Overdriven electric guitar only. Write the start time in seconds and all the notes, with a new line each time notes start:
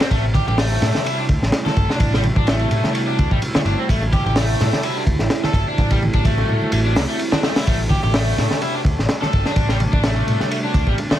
0.01 C4
0.11 A3
0.35 G4
0.48 G4
0.58 A3
1.06 E4
1.19 D4
1.66 A4
1.90 D4
2.13 G3
2.37 D4
2.48 A3
2.94 A3
3.07 D4
3.32 G3
3.56 A3
3.66 D4
3.79 C4
3.90 A3
4.14 G4
4.26 G4
4.38 A3
4.84 E4
4.97 D4
5.45 A4
5.68 D4
5.91 G3
6.15 D4
6.26 A3
6.73 A3
6.86 D4
6.97 D4
7.09 A3
7.33 D4
7.44 A3
7.57 E4
7.68 A3
7.91 G4
8.04 G4
8.14 A3
8.62 E4
8.75 D4
9.22 A4
9.46 D4
9.70 G3
9.93 D4
10.04 A3
10.51 A3
10.64 D4
10.88 G3
11.11 A3